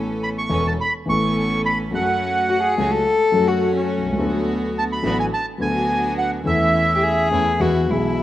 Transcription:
0.00 0.45 A1 medium
0.00 0.45 A2 medium
0.00 0.45 E3 medium
0.00 0.45 B3 medium
0.00 0.46 B3 medium
0.00 0.46 C#4 medium
0.00 0.46 A4 medium
0.23 0.29 B5 medium
0.38 0.67 C#6 medium
0.49 0.74 E1 medium
0.49 0.74 E2 medium
0.49 0.74 E3 medium
0.49 0.74 B3 medium
0.49 0.74 C#4 medium
0.49 0.74 A4 medium
0.67 0.73 A5 medium
0.81 0.93 B5 medium
1.06 1.89 A1 medium
1.06 1.89 A2 medium
1.06 1.88 E3 medium
1.06 1.88 B3 medium
1.06 1.89 B3 medium
1.06 1.89 C#4 medium
1.06 1.89 A4 medium
1.06 1.62 C#6 medium
1.10 1.90 A4 medium
1.66 1.78 B5 medium
1.92 2.74 F#2 medium
1.92 2.74 F#3 medium
1.92 2.73 A3 medium
1.92 2.73 C#4 medium
1.92 2.74 C#4 medium
1.92 2.74 F#4 medium
1.92 2.75 A4 medium
1.92 2.74 F#5 medium
2.50 2.63 F#4 medium
2.63 2.93 G#4 medium
2.77 3.01 C#2 medium
2.77 3.02 C#3 medium
2.77 3.01 F#3 medium
2.77 3.01 A3 medium
2.77 3.01 C#4 medium
2.77 3.01 F#4 medium
2.77 3.02 A4 medium
2.91 3.49 A4 loud
3.32 4.15 F#2 medium
3.32 4.15 F#3 medium
3.32 4.15 A3 medium
3.32 4.15 C#4 medium
3.32 4.15 F#4 medium
3.32 4.16 A4 medium
3.48 3.76 F#4 medium
3.77 4.58 C#4 medium
3.98 4.05 B1 soft
4.04 4.12 C2 medium
4.12 4.19 C#2 medium
4.16 4.99 D2 medium
4.16 4.99 D3 medium
4.16 5.00 D3 medium
4.16 4.98 F#3 medium
4.16 4.99 B3 medium
4.16 4.99 F#4 medium
4.16 5.00 F#4 medium
4.20 5.00 A4 medium
4.78 4.84 A5 medium
4.92 5.17 B5 medium
5.03 5.27 A1 medium
5.03 5.27 A2 medium
5.03 5.27 F#3 medium
5.03 5.27 B3 medium
5.03 5.27 D4 medium
5.03 5.28 F#4 medium
5.03 5.27 A4 medium
5.20 5.26 G#5 medium
5.34 5.46 A5 medium
5.58 6.41 D2 medium
5.58 6.41 D3 medium
5.58 6.40 F#3 medium
5.58 6.41 B3 medium
5.58 6.41 D4 medium
5.58 6.41 F#4 medium
5.58 6.14 G#5 medium
5.62 6.42 A4 medium
6.18 6.31 F#5 medium
6.45 7.27 E2 medium
6.45 7.27 E3 medium
6.45 7.27 A3 medium
6.45 7.27 C#4 medium
6.45 7.28 C#4 medium
6.45 7.27 E4 medium
6.45 7.28 A4 medium
6.45 7.28 E5 medium
6.95 7.04 G4 medium
7.03 7.62 G#4 medium
7.31 7.56 E2 medium
7.31 7.56 E3 medium
7.31 7.56 A3 medium
7.31 7.56 C#4 medium
7.31 7.56 E4 medium
7.31 7.56 A4 medium
7.59 7.84 E2 medium
7.59 7.84 E3 medium
7.59 7.84 G#3 medium
7.59 7.85 G#3 medium
7.59 7.84 B3 medium
7.59 7.85 B3 medium
7.59 7.85 E4 medium
7.59 7.92 F#4 medium
7.59 7.85 G#4 medium
7.88 8.23 B1 medium
7.88 8.23 B2 medium
7.88 8.23 E3 medium
7.88 8.23 G#3 medium
7.88 8.23 B3 medium
7.88 8.23 E4 medium
7.92 8.23 G#4 medium

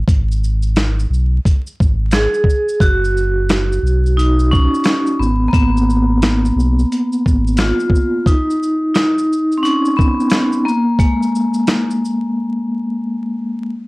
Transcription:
0.08 1.06 G#1 loud
0.08 kick loud
0.08 closed hi-hat medium
0.08 shaker medium
0.32 shaker soft
0.44 shaker medium
0.62 shaker medium
0.76 snare loud
0.76 closed hi-hat medium
0.76 shaker medium
1.00 shaker soft
1.10 1.39 B1 loud
1.10 shaker soft
1.45 kick medium
1.45 closed hi-hat medium
1.45 shaker medium
1.67 shaker soft
1.80 2.27 G#1 medium
1.80 kick medium
1.80 shaker soft
2.11 2.83 G#4 loud
2.11 snare loud
2.11 closed hi-hat medium
2.11 shaker medium
2.34 shaker soft
2.44 kick medium
2.50 shaker medium
2.69 shaker medium
2.80 3.79 F#1 loud
2.80 4.21 F#4 loud
2.80 kick loud
2.80 closed hi-hat medium
2.80 shaker medium
3.05 shaker soft
3.17 shaker soft
3.49 snare loud
3.49 closed hi-hat medium
3.49 shaker medium
3.72 shaker medium
3.82 4.68 B1 loud
3.87 shaker soft
4.06 shaker soft
4.17 4.49 D#4 loud
4.17 closed hi-hat medium
4.17 shaker medium
4.39 shaker soft
4.51 5.15 C#4 loud
4.51 kick medium
4.51 shaker medium
4.74 shaker soft
4.84 snare loud
4.84 closed hi-hat medium
4.84 shaker medium
5.07 shaker soft
5.19 5.49 G#1 medium
5.19 5.49 B3 medium
5.19 shaker medium
5.48 5.53 A#3 medium
5.53 6.51 G#1 loud
5.53 7.64 B3 loud
5.53 kick loud
5.53 closed hi-hat medium
5.53 shaker medium
5.77 shaker soft
5.90 shaker soft
6.22 snare loud
6.22 closed hi-hat medium
6.22 shaker medium
6.45 shaker medium
6.56 6.85 B1 loud
6.60 shaker medium
6.79 shaker soft
6.92 closed hi-hat medium
6.92 shaker medium
7.12 shaker soft
7.26 7.73 G#1 medium
7.26 kick medium
7.26 shaker soft
7.47 shaker soft
7.57 8.28 F4 medium
7.57 snare loud
7.57 closed hi-hat medium
7.57 shaker medium
7.80 shaker soft
7.90 kick medium
7.96 shaker soft
8.26 8.90 D#4 loud
8.26 kick loud
8.26 closed hi-hat medium
8.26 shaker medium
8.50 shaker medium
8.63 shaker medium
8.94 9.59 D#4 medium
8.94 snare loud
8.94 closed hi-hat medium
8.94 shaker medium
9.18 shaker medium
9.33 shaker medium
9.52 shaker soft
9.58 9.63 C4 medium
9.63 9.98 C#4 loud
9.63 closed hi-hat medium
9.63 shaker medium
9.85 shaker soft
9.97 10.67 B3 medium
9.97 kick medium
9.97 shaker soft
10.20 shaker soft
10.30 snare loud
10.30 closed hi-hat medium
10.30 shaker medium
10.52 shaker soft
10.65 10.80 A#3 medium
10.65 shaker soft
10.99 12.99 G#3 medium
10.99 kick medium
10.99 closed hi-hat medium
10.99 shaker medium
11.23 shaker soft
11.35 shaker medium
11.54 shaker soft
11.67 snare loud
11.67 closed hi-hat medium
11.67 shaker medium
11.91 shaker soft
12.05 shaker medium

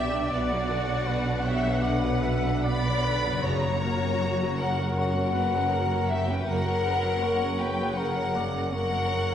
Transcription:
0.00 0.27 B1 medium
0.00 0.27 B2 medium
0.00 0.96 B2 medium
0.00 0.12 B3 medium
0.00 0.27 B3 medium
0.00 1.01 B3 medium
0.00 0.28 D4 loud
0.00 0.31 G4 loud
0.00 1.08 D5 loud
0.00 0.30 E5 loud
0.00 0.31 E5 medium
0.13 0.31 D4 medium
0.30 3.40 B1 medium
0.30 3.40 B2 medium
0.30 3.39 B3 medium
0.30 0.49 B3 medium
0.30 3.39 D4 medium
0.30 1.45 F#4 loud
0.30 1.45 D5 loud
0.30 1.17 D5 loud
0.30 3.40 F#5 medium
0.51 0.70 F#3 medium
0.70 0.89 D3 medium
0.90 1.08 F#3 medium
1.07 1.27 B3 medium
1.07 1.46 B4 medium
1.29 1.46 D4 medium
1.45 1.64 B3 medium
1.45 1.82 G4 medium
1.45 1.83 C#5 medium
1.45 1.82 E5 loud
1.45 1.82 E5 medium
1.66 1.84 F#3 medium
1.81 2.02 D3 medium
1.81 2.64 B4 medium
1.81 2.23 D5 medium
1.81 2.64 F#5 medium
1.81 2.65 F#5 medium
2.05 2.24 F#3 medium
2.22 2.45 B3 medium
2.22 2.63 E5 medium
2.46 2.66 D4 medium
2.63 3.06 D5 loud
2.63 3.42 D5 loud
2.63 3.43 B5 medium
2.63 3.42 B5 loud
2.68 2.87 B3 medium
2.87 3.06 F#3 medium
3.04 3.25 D3 medium
3.04 3.45 B4 medium
3.26 7.16 F#2 medium
3.26 3.45 F#3 medium
3.30 7.20 C#3 medium
3.35 7.25 F#3 medium
3.42 6.43 F#1 medium
3.42 4.55 F#2 loud
3.42 6.43 F#2 medium
3.42 3.63 C#3 medium
3.42 6.30 F#3 medium
3.42 6.30 C#4 medium
3.42 6.44 F#4 medium
3.42 3.84 C#5 medium
3.42 4.59 C#5 loud
3.42 4.57 A#5 medium
3.42 4.60 A#5 loud
3.66 3.84 F#3 medium
3.82 4.03 A#3 medium
3.82 4.23 A#4 medium
4.04 4.22 C#4 medium
4.21 4.42 A#3 medium
4.21 4.59 F#4 medium
4.42 4.60 F#3 medium
4.60 4.79 C#3 medium
4.60 5.00 A#4 medium
4.60 4.96 A#4 medium
4.60 4.96 F#5 medium
4.60 4.97 F#5 loud
4.81 4.99 F#3 medium
4.97 5.16 A#3 medium
4.97 6.07 A#4 medium
4.97 5.34 C#5 medium
4.97 6.08 F#5 loud
4.97 6.08 F#5 medium
5.19 5.36 C#4 medium
5.35 5.54 A#3 medium
5.35 5.75 B4 medium
5.55 5.73 F#3 medium
5.74 5.92 C#3 medium
5.74 6.21 A#4 medium
5.93 6.10 F#3 medium
6.10 6.29 A#3 medium
6.10 6.28 G4 medium
6.10 6.28 E5 loud
6.10 6.28 E5 medium
6.28 6.48 C#4 medium
6.28 6.47 B4 medium
6.28 6.47 G5 loud
6.28 6.47 G5 medium
6.47 9.35 F#1 medium
6.47 9.35 F#2 medium
6.47 9.35 C#3 medium
6.47 9.35 F#3 medium
6.47 6.66 F#3 medium
6.47 6.65 A#3 medium
6.47 7.59 A#4 loud
6.47 6.82 A#4 medium
6.47 7.57 F#5 loud
6.47 7.59 F#5 loud
6.67 6.85 F#3 medium
6.85 7.03 C#3 medium
6.85 7.24 B4 medium
7.03 7.22 F#3 medium
7.22 7.41 A#3 medium
7.22 7.99 C#5 medium
7.42 7.60 C#4 medium
7.59 7.79 A#3 medium
7.59 7.97 B4 medium
7.59 7.97 G5 medium
7.59 7.97 G5 loud
7.79 7.97 F#3 medium
7.96 8.14 C#3 medium
7.96 8.71 A#4 medium
7.96 8.37 A#4 loud
7.96 8.70 F#5 loud
7.96 8.44 F#5 loud
8.16 8.34 F#3 medium
8.34 8.53 A#3 medium
8.34 8.74 D5 medium
8.54 8.72 C#4 medium
8.72 8.92 A#3 medium
8.72 9.35 A#4 loud
8.72 9.35 C#5 medium
8.72 9.35 F#5 loud
8.92 9.12 F#3 medium
9.12 9.32 C#3 medium

